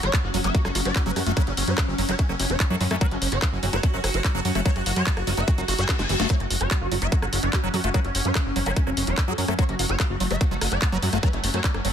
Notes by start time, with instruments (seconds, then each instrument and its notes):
Already playing: synth texture F#3 C#4
0.03 analog synth bass F#1, digital synth lead C#5, cross-stick, closed hi-hat
0.13 acid bass F#3, digital synth lead F#4, kick, clap, closed hi-hat
0.24 analog synth bass F#1, digital synth lead F#4
0.34 analog synth bass F#1, acid bass F#3, digital synth lead F#4, open hi-hat
0.44 analog synth bass F#1, acid bass F#3, digital synth lead E5, closed hi-hat
0.55 acid bass A3, digital synth lead F#4, kick, closed hi-hat
0.65 analog synth bass F#1, acid bass F#3, digital synth lead F#4, cross-stick
0.75 analog synth bass F#1, digital synth lead F#4, open hi-hat
0.85 analog synth bass F#1, digital synth lead D5, closed hi-hat
0.96 digital synth lead F#4, kick, clap, closed hi-hat
1.06 analog synth bass F#1, acid bass F#3, digital synth lead B4
1.16 analog synth bass F#2, acid bass F#3, digital synth lead F#4, cross-stick, open hi-hat
1.27 analog synth bass F#1, acid bass A3, digital synth lead F#4, closed hi-hat
1.37 acid bass F#3, digital synth lead B4, kick, closed hi-hat
1.47 analog synth bass F#1, digital synth lead C#4, closed hi-hat
1.57 analog synth bass F#1, digital synth lead C#4, open hi-hat
1.68 analog synth bass F#2, digital synth lead C#5, closed hi-hat
1.78 acid bass F#3, digital synth lead C#4, kick, cross-stick, clap, closed hi-hat
1.88 analog synth bass F#1, digital synth lead C#4
1.98 analog synth bass F#1, acid bass F#3, digital synth lead C#4, open hi-hat
2.09 analog synth bass F#1, acid bass F#3, digital synth lead C#5, closed hi-hat
2.19 acid bass A3, digital synth lead C#4, kick, closed hi-hat
2.29 analog synth bass F#1, acid bass F#3, digital synth lead C#4, cross-stick
2.40 analog synth bass F#1, digital synth lead C#4, open hi-hat
2.50 analog synth bass E1, digital synth lead C#5, closed hi-hat
2.60 digital synth lead C#4, kick, clap, closed hi-hat
2.70 analog synth bass F#2, acid bass F#3, digital synth lead A4
2.81 analog synth bass F#2, acid bass F#3, digital synth lead C#4, open hi-hat
2.91 analog synth bass F#2, acid bass A3, digital synth lead C#4, cross-stick, closed hi-hat
3.01 acid bass F#3, synth texture F#4, digital synth lead B4, kick, closed hi-hat
3.11 analog synth bass F#1, digital synth lead C#4, closed hi-hat
3.22 analog synth bass F#1, digital synth lead C#4, open hi-hat
3.32 analog synth bass F#1, digital synth lead C#5, closed hi-hat
3.42 acid bass F#3, digital synth lead C#4, kick, cross-stick, clap, closed hi-hat
3.52 analog synth bass F#1, digital synth lead C#4
3.63 analog synth bass F#1, acid bass F#3, digital synth lead C#4, open hi-hat
3.73 analog synth bass F#1, acid bass F#3, digital synth lead C#5, closed hi-hat
3.83 acid bass A3, digital synth lead C#4, kick, closed hi-hat
3.94 analog synth bass F#1, acid bass F#3, digital synth lead C#4
4.04 analog synth bass F#1, digital synth lead C#4, cross-stick, open hi-hat
4.14 analog synth bass F#1, digital synth lead C#5, closed hi-hat
4.24 digital synth lead C#4, kick, clap, closed hi-hat
4.35 analog synth bass F#1, acid bass F#3, digital synth lead A4
4.45 analog synth bass F#2, acid bass F#3, digital synth lead C#4, open hi-hat
4.55 analog synth bass F#1, acid bass A3, digital synth lead C#4, cross-stick, closed hi-hat
4.66 acid bass F#3, digital synth lead C#5, kick, closed hi-hat
4.76 analog synth bass F#1, digital synth lead F#4, closed hi-hat
4.86 analog synth bass F#1, digital synth lead F#4, open hi-hat
4.96 analog synth bass F#2, digital synth lead C#5, closed hi-hat
5.07 acid bass F#3, digital synth lead F#4, kick, clap, closed hi-hat
5.17 analog synth bass F#1, digital synth lead F#4, cross-stick, closed hi-hat
5.27 analog synth bass F#1, acid bass F#3, digital synth lead F#4, open hi-hat
5.37 analog synth bass F#1, acid bass F#3, digital synth lead E5, closed hi-hat
5.48 acid bass A3, digital synth lead F#4, kick, closed hi-hat, reverse cymbal
5.58 analog synth bass F#1, acid bass F#3, digital synth lead F#4, closed hi-hat
5.68 analog synth bass F#1, acid bass F#4, digital synth lead F#4, cross-stick, open hi-hat
5.79 analog synth bass F#1, acid bass F#4, digital synth lead G#5, closed hi-hat
5.89 digital synth lead F#4, kick, snare, clap, closed hi-hat
5.99 analog synth bass F#1, acid bass G#3, digital synth lead G#5, snare
6.09 analog synth bass F#1, acid bass E3, digital synth lead F#4, open hi-hat
6.20 analog synth bass F#1, acid bass A3, digital synth lead F#4, snare, closed hi-hat
6.30 acid bass F#3, synth texture F#3 C#4, digital synth lead C#5, kick, closed hi-hat
6.40 analog synth bass F#1, digital synth lead F#4, closed hi-hat
6.50 analog synth bass F#1, digital synth lead F#4, open hi-hat
6.61 analog synth bass F#1, digital synth lead C#5, cross-stick, closed hi-hat
6.71 acid bass F#3, digital synth lead F#4, kick, clap, closed hi-hat
6.81 analog synth bass F#1, digital synth lead F#4
6.92 analog synth bass F#1, acid bass F#3, digital synth lead F#4, open hi-hat
7.02 analog synth bass F#1, acid bass F#3, digital synth lead E5, closed hi-hat
7.12 acid bass A3, digital synth lead F#4, kick, closed hi-hat
7.22 analog synth bass F#1, acid bass F#3, digital synth lead F#4, cross-stick
7.33 analog synth bass F#1, digital synth lead F#4, open hi-hat
7.43 analog synth bass F#1, digital synth lead D5, closed hi-hat
7.53 digital synth lead F#4, kick, clap, closed hi-hat
7.63 analog synth bass F#1, acid bass F#3, digital synth lead B4
7.74 analog synth bass F#2, acid bass F#3, digital synth lead F#4, cross-stick, open hi-hat
7.84 analog synth bass F#1, acid bass A3, digital synth lead F#4, closed hi-hat
7.94 acid bass F#3, digital synth lead B4, kick, closed hi-hat
8.04 analog synth bass F#1, digital synth lead C#4, closed hi-hat
8.15 analog synth bass F#1, digital synth lead C#4, open hi-hat
8.25 analog synth bass F#2, digital synth lead C#5, closed hi-hat
8.35 acid bass F#3, digital synth lead C#4, kick, cross-stick, clap, closed hi-hat
8.46 analog synth bass F#1, digital synth lead C#4
8.56 analog synth bass F#1, acid bass F#3, digital synth lead C#4, open hi-hat
8.66 analog synth bass F#1, acid bass F#3, digital synth lead C#5, closed hi-hat
8.76 acid bass A3, digital synth lead C#4, kick, closed hi-hat
8.87 analog synth bass F#1, acid bass F#3, digital synth lead C#4, cross-stick
8.97 analog synth bass F#1, digital synth lead C#4, open hi-hat
9.07 analog synth bass E1, digital synth lead C#5, closed hi-hat
9.18 digital synth lead C#4, kick, clap, closed hi-hat
9.28 analog synth bass F#2, acid bass F#3, digital synth lead A4
9.38 analog synth bass F#2, acid bass F#3, digital synth lead C#4, open hi-hat
9.48 analog synth bass F#2, acid bass A3, digital synth lead C#4, cross-stick, closed hi-hat
9.59 acid bass F#3, synth texture A3, digital synth lead C#5, kick, closed hi-hat
9.69 analog synth bass F#1, digital synth lead F#4, closed hi-hat
9.79 analog synth bass F#1, digital synth lead F#4, open hi-hat
9.89 analog synth bass F#1, digital synth lead C#5, closed hi-hat
10.00 acid bass F#3, digital synth lead F#4, kick, cross-stick, clap, closed hi-hat
10.10 analog synth bass F#1, digital synth lead F#4
10.20 analog synth bass F#1, acid bass F#3, digital synth lead F#4, open hi-hat
10.31 analog synth bass F#1, acid bass F#3, digital synth lead E5, closed hi-hat
10.41 acid bass A3, digital synth lead F#4, kick, closed hi-hat
10.51 analog synth bass F#1, acid bass F#3, digital synth lead F#4
10.61 analog synth bass F#1, digital synth lead F#4, cross-stick, open hi-hat
10.72 analog synth bass F#1, digital synth lead D5, closed hi-hat
10.82 digital synth lead F#4, kick, clap, closed hi-hat
10.92 analog synth bass F#1, acid bass F#3, digital synth lead B4
11.03 analog synth bass F#2, acid bass F#3, digital synth lead F#4, open hi-hat
11.13 analog synth bass F#1, acid bass A3, digital synth lead F#4, cross-stick, closed hi-hat
11.23 acid bass F#3, digital synth lead B4, kick, closed hi-hat
11.33 analog synth bass F#1, digital synth lead C#4, closed hi-hat
11.44 analog synth bass F#1, digital synth lead C#4, open hi-hat
11.54 analog synth bass F#2, digital synth lead C#5, closed hi-hat
11.64 acid bass F#3, digital synth lead C#4, kick, clap, closed hi-hat
11.74 analog synth bass F#1, digital synth lead C#4, cross-stick, closed hi-hat
11.85 analog synth bass F#1, acid bass F#3, digital synth lead C#4, open hi-hat